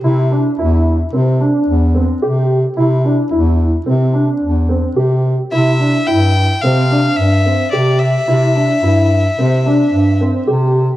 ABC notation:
X:1
M:5/4
L:1/8
Q:1/4=110
K:C
V:1 name="Violin"
z8 z2 | z8 z2 | e2 g2 f2 e2 d e- | e6- e z3 |]
V:2 name="Grand piano"
E D E2 C D2 C G2 | E D E2 C D2 C G2 | E D E2 C D2 C G2 | E D E2 C D2 C G2 |]
V:3 name="Bass clarinet" clef=bass
C,2 E,,2 C,2 E,,2 C,2 | C,2 E,,2 C,2 E,,2 C,2 | C,2 G,,2 C,2 G,,2 C,2 | C,2 G,,2 C,2 G,,2 C,2 |]